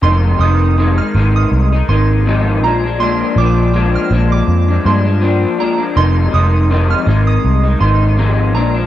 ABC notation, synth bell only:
X:1
M:4/4
L:1/16
Q:"Swing 16ths" 1/4=81
K:Fdor
V:1 name="Synth bell"
c'2 e'2 z f' z e'2 z c' z3 b z | c'2 d'2 z f' z d'2 z c' z3 b z | c'2 e'2 z f' z e'2 z c' z3 b z |]